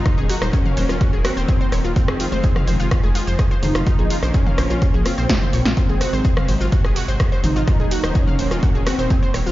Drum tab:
HH |--o---o---o---o-|--o---o---o---o-|--o---o---o---o-|--o---o---o---o-|
SH |x-xxx-xxx-xxx-xx|x-xxx-xxx-xxx-xx|x-xxx-xxx-xxx-xx|x-xxx-xxx-xxx-xx|
SD |r--r---r--r---r-|-r---r--r---r--r|---r--r---r-o--o|--r--r---r--r---|
T2 |-----o----------|-----o--------o-|-----o-------o--|-----o--------o-|
BD |o---o---o---o---|o---o---o---o---|o---o---o---o---|o---o---o---o---|

HH |--o---o---o---o-|
SH |x-xxx-xxx-xxx-xx|
SD |r--r---r--r---r-|
T2 |-----o----------|
BD |o---o---o---o---|